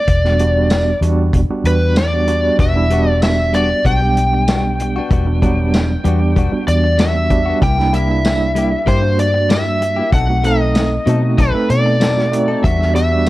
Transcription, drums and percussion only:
0.08 kick, closed hi-hat
0.25 snare
0.39 closed hi-hat
0.70 snare, closed hi-hat, tambourine
1.02 closed hi-hat
1.33 kick, closed hi-hat
1.65 closed hi-hat
1.96 snare, closed hi-hat, tambourine
2.28 closed hi-hat
2.59 kick, closed hi-hat
2.90 closed hi-hat
3.22 snare, closed hi-hat, tambourine
3.54 closed hi-hat
3.85 kick, closed hi-hat
4.17 closed hi-hat
4.48 snare, closed hi-hat, tambourine
4.80 closed hi-hat
5.11 kick, closed hi-hat
5.42 kick, closed hi-hat
5.74 snare, closed hi-hat, tambourine
6.05 closed hi-hat
6.36 kick, closed hi-hat
6.68 closed hi-hat
6.99 snare, closed hi-hat, tambourine
7.30 kick, closed hi-hat
7.62 kick, closed hi-hat
7.79 snare
7.94 closed hi-hat
8.25 snare, closed hi-hat, tambourine
8.56 closed hi-hat
8.87 kick, closed hi-hat
9.19 closed hi-hat
9.50 snare, closed hi-hat, tambourine
9.82 closed hi-hat
10.12 kick, closed hi-hat
10.44 closed hi-hat
10.75 snare, closed hi-hat, tambourine
11.07 closed hi-hat
11.38 kick, closed hi-hat
11.70 closed hi-hat
12.01 snare, closed hi-hat, tambourine
12.19 snare
12.33 closed hi-hat
12.64 kick, closed hi-hat
12.82 snare
12.96 closed hi-hat

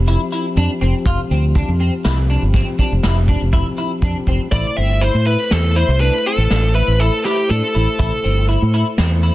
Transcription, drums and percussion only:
0.07 closed hi-hat
0.32 closed hi-hat
0.56 closed hi-hat
0.81 closed hi-hat
1.05 kick, closed hi-hat
1.31 closed hi-hat
1.55 kick, closed hi-hat
1.80 closed hi-hat
2.05 snare, closed hi-hat
2.30 closed hi-hat
2.54 kick, snare, closed hi-hat
2.79 kick, closed hi-hat
3.03 snare, closed hi-hat
3.28 kick, closed hi-hat
3.53 kick, closed hi-hat
3.77 closed hi-hat
4.01 kick, closed hi-hat
4.27 kick, closed hi-hat
4.52 kick, closed hi-hat
4.76 closed hi-hat
5.01 closed hi-hat
5.26 closed hi-hat
5.51 snare, closed hi-hat
5.75 closed hi-hat
6.00 closed hi-hat
6.25 closed hi-hat
6.51 snare, closed hi-hat
6.75 closed hi-hat
7.00 closed hi-hat
7.25 snare, closed hi-hat
7.50 closed hi-hat
7.75 closed hi-hat
7.99 kick, closed hi-hat
8.24 closed hi-hat
8.49 closed hi-hat
8.74 closed hi-hat
8.98 snare, closed hi-hat
9.22 closed hi-hat

